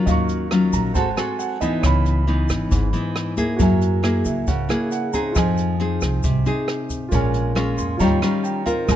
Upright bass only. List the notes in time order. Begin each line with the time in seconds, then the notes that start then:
0.07 D#2
0.73 A#1
0.95 G#1
1.83 C#2
2.50 G#1
2.72 G#1
3.60 F#2
4.26 C#2
4.48 C#2
5.36 F2
6.02 C2
6.24 C2
7.12 A#1
7.78 F2
8.01 D#2
8.89 G#1